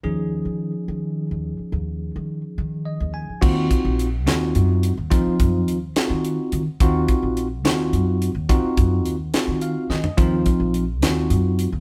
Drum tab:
CC |------------|------------|x-----------|------------|
HH |------------|------------|--x-x-x-x-x-|x-x-x-x-x-x-|
SD |------------|------------|------o-----|------o-----|
FT |------------|------------|------------|------------|
BD |------------|------------|o-o---------|o-o---------|

CC |------------|------------|------------|
HH |x-x-x-x-x-x-|x-x-x-x-x---|x-x-x-x-x-x-|
SD |------o-----|------o---o-|------o-----|
FT |------------|-----------o|------------|
BD |o-o---------|o-o---------|o-o---------|